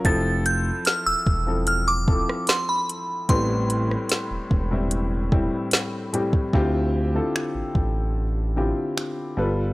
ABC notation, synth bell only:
X:1
M:4/4
L:1/16
Q:1/4=74
K:Ddor
V:1 name="Synth bell"
a'2 g'2 f' e'3 f' d'3 c' b3 | c'12- c'2 z2 | z16 |]